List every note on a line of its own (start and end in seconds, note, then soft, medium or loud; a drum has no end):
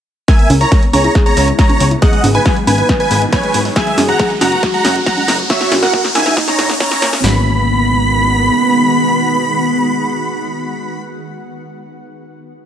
0.28 2.01 C#3 medium
0.28 0.33 G#3 medium
0.28 5.46 G#3 medium
0.28 3.73 B3 medium
0.28 2.01 E4 medium
0.28 0.85 A#4 loud
0.28 0.48 E5 medium
0.28 0.48 G#5 medium
0.28 0.48 G#5 loud
0.28 kick loud
0.28 snare soft
0.28 closed hi-hat medium
0.28 riser medium
0.39 0.44 B3 medium
0.39 closed hi-hat soft
0.50 0.65 C#2 loud
0.50 0.57 C#4 loud
0.50 open hi-hat loud
0.50 high conga medium
0.61 0.65 E4 medium
0.61 0.81 C#5 medium
0.61 0.81 A#5 medium
0.61 closed hi-hat soft
0.72 0.78 G#3 medium
0.72 kick loud
0.72 snare soft
0.72 closed hi-hat medium
0.83 0.89 B3 medium
0.83 closed hi-hat soft
0.93 1.09 C#2 medium
0.93 0.98 C#4 medium
0.93 1.35 G#4 medium
0.93 1.13 C#5 medium
0.93 1.13 A#5 medium
0.93 1.14 A#5 medium
0.93 open hi-hat medium
0.93 high conga medium
1.04 1.07 E4 medium
1.04 closed hi-hat soft
1.15 1.20 G#3 medium
1.15 kick loud
1.15 snare soft
1.15 closed hi-hat medium
1.26 1.31 B3 medium
1.26 1.46 C#5 medium
1.26 1.46 A#5 medium
1.26 closed hi-hat soft
1.37 1.52 C#2 loud
1.37 1.44 C#4 loud
1.37 open hi-hat loud
1.48 1.52 E4 medium
1.48 closed hi-hat soft
1.59 1.65 G#3 medium
1.59 1.85 C#5 medium
1.59 1.85 A#5 loud
1.59 1.85 A#5 medium
1.59 kick loud
1.59 snare medium
1.59 closed hi-hat medium
1.70 1.76 B3 medium
1.70 closed hi-hat soft
1.70 high conga medium
1.80 1.96 C#2 medium
1.80 1.85 C#4 medium
1.80 open hi-hat loud
1.91 1.94 E4 medium
1.91 closed hi-hat soft
2.02 3.74 D#3 medium
2.02 2.07 F#3 medium
2.02 3.74 F#4 medium
2.02 2.59 G#4 loud
2.02 2.22 D#5 medium
2.02 2.22 F#5 medium
2.02 kick loud
2.02 snare medium
2.02 closed hi-hat medium
2.13 2.17 G#3 medium
2.13 closed hi-hat soft
2.24 2.39 G#1 loud
2.24 2.30 B3 medium
2.24 open hi-hat loud
2.24 high conga medium
2.35 2.39 D#4 medium
2.35 2.55 B4 medium
2.35 2.55 G#5 medium
2.35 closed hi-hat soft
2.46 2.52 F#3 loud
2.46 kick loud
2.46 snare medium
2.46 closed hi-hat medium
2.56 2.63 G#3 medium
2.56 closed hi-hat soft
2.67 2.83 G#1 medium
2.67 2.72 B3 medium
2.67 2.87 B4 medium
2.67 3.24 B4 loud
2.67 2.87 G#5 medium
2.67 open hi-hat loud
2.67 high conga medium
2.78 2.81 D#4 medium
2.78 closed hi-hat soft
2.89 2.94 F#3 medium
2.89 kick loud
2.89 snare medium
2.89 closed hi-hat medium
3.00 3.04 G#3 medium
3.00 3.20 B4 medium
3.00 3.20 G#5 medium
3.00 3.20 G#5 loud
3.00 closed hi-hat soft
3.11 3.26 G#1 loud
3.11 3.17 B3 loud
3.11 open hi-hat loud
3.22 3.26 D#4 medium
3.22 closed hi-hat soft
3.32 3.39 F#3 medium
3.32 3.59 B4 medium
3.32 3.74 C#5 medium
3.32 3.59 G#5 medium
3.32 kick loud
3.32 snare medium
3.32 closed hi-hat medium
3.43 3.50 G#3 medium
3.43 closed hi-hat soft
3.54 3.70 G#1 medium
3.54 3.59 B3 medium
3.54 open hi-hat loud
3.65 3.68 D#4 medium
3.65 open hi-hat medium
3.76 7.20 C#3 medium
3.76 5.48 F#3 medium
3.76 3.80 F#3 medium
3.76 5.48 F#4 medium
3.76 4.33 G#4 loud
3.76 3.96 E5 medium
3.76 3.96 G#5 loud
3.76 kick loud
3.76 snare medium
3.76 closed hi-hat medium
3.87 3.91 G#3 medium
3.87 closed hi-hat soft
3.98 4.13 F#1 loud
3.98 4.04 C#4 loud
3.98 snare medium
3.98 open hi-hat loud
3.98 high conga medium
4.09 4.13 F#4 medium
4.09 4.29 F#5 medium
4.09 4.29 A#5 medium
4.09 closed hi-hat soft
4.19 4.26 F#3 loud
4.19 kick loud
4.19 snare medium
4.19 closed hi-hat medium
4.30 4.37 G#3 medium
4.30 closed hi-hat soft
4.41 4.57 F#1 medium
4.41 4.46 C#4 medium
4.41 4.83 F#4 medium
4.41 4.61 F#5 medium
4.41 4.61 A#5 loud
4.41 snare medium
4.41 open hi-hat loud
4.41 high conga medium
4.52 4.55 F#4 medium
4.52 closed hi-hat soft
4.63 4.67 F#3 medium
4.63 kick loud
4.63 snare medium
4.63 closed hi-hat medium
4.74 4.78 G#3 medium
4.74 4.94 F#5 medium
4.74 4.94 A#5 medium
4.74 closed hi-hat soft
4.85 5.00 F#1 loud
4.85 4.91 C#4 loud
4.85 snare medium
4.85 open hi-hat loud
4.96 5.00 F#4 medium
4.96 closed hi-hat soft
5.06 5.13 F#3 loud
5.06 5.33 F#5 medium
5.06 5.33 A#5 loud
5.06 kick loud
5.06 snare medium
5.06 closed hi-hat medium
5.17 5.24 G#3 medium
5.17 closed hi-hat soft
5.17 high conga medium
5.28 5.43 F#1 medium
5.28 5.33 C#4 medium
5.28 snare medium
5.28 open hi-hat loud
5.39 5.42 F#4 medium
5.39 closed hi-hat soft
5.50 7.22 E3 medium
5.50 5.54 A#3 medium
5.50 7.22 A#3 medium
5.50 6.07 F#4 loud
5.50 5.70 C#5 medium
5.50 5.70 E5 loud
5.50 kick loud
5.50 snare medium
5.50 closed hi-hat medium
5.61 5.65 C#4 medium
5.61 snare medium
5.61 closed hi-hat soft
5.72 5.87 A#1 loud
5.72 5.78 E4 medium
5.72 snare loud
5.72 open hi-hat loud
5.72 high conga medium
5.82 6.03 A#4 medium
5.82 5.87 A#4 medium
5.82 6.03 F#5 medium
5.82 snare medium
5.82 closed hi-hat soft
5.93 6.00 A#3 loud
5.93 kick loud
5.93 snare loud
5.93 closed hi-hat medium
6.04 6.11 C#4 medium
6.04 snare medium
6.04 closed hi-hat soft
6.15 6.30 A#1 medium
6.15 6.72 D#4 loud
6.15 6.20 E4 medium
6.15 6.35 E5 medium
6.15 6.35 G#5 medium
6.15 6.35 G#5 loud
6.15 snare loud
6.15 open hi-hat loud
6.15 high conga medium
6.26 6.29 A#4 medium
6.26 snare medium
6.26 closed hi-hat soft
6.37 6.41 A#3 medium
6.37 kick loud
6.37 snare loud
6.37 closed hi-hat medium
6.48 6.52 C#4 medium
6.48 6.68 C#5 medium
6.48 6.68 A#5 loud
6.48 6.68 A#5 medium
6.48 snare medium
6.48 closed hi-hat soft
6.59 6.74 A#1 loud
6.59 6.61 A#3 loud
6.59 snare loud
6.59 open hi-hat loud
6.70 6.74 A#5 medium
6.70 snare loud
6.70 closed hi-hat soft
6.80 7.22 C#4 medium
6.80 6.83 E4 medium
6.80 7.07 C#5 medium
6.80 7.07 A#5 loud
6.80 kick loud
6.80 snare loud
6.80 closed hi-hat medium
6.91 6.96 E4 loud
6.91 snare loud
6.91 closed hi-hat soft
7.02 7.17 A#2 medium
7.02 7.06 C#5 loud
7.02 snare loud
7.02 open hi-hat loud
7.13 7.20 C#4 loud
7.13 snare loud
7.13 open hi-hat medium
7.24 8.50 G#1 medium
7.24 11.02 D#3 medium
7.24 7.44 F#3 medium
7.24 11.02 G#3 medium
7.24 11.02 B3 medium
7.24 11.02 B3 loud
7.24 11.02 F#4 medium
7.24 11.02 B5 loud
7.24 snare loud